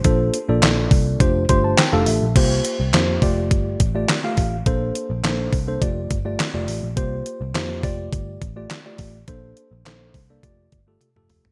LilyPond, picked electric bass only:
\new Staff \with { instrumentName = "Picked electric bass" } { \clef bass \time 4/4 \key f \major \tempo 4 = 104 bes,,8 r16 bes,,16 bes,,8 c,8 f,,8 g,,8 r16 f,,16 a,,16 bes,,16 | c,8 r16 c,16 f,8 f,,8 g,,8 a,,8 r8 a,,8 | bes,,8 r16 bes,,16 bes,,8 c,8 f,,8 g,,8 r16 f,,16 a,,16 bes,,16 | c,8 r16 c,16 f,8 f,,8 g,,8 a,,8 r8 a,,8 |
bes,,8 r16 bes,,16 bes,,8 c,8 f,,8 g,,8 r16 f,,16 f,,16 g,,16 | }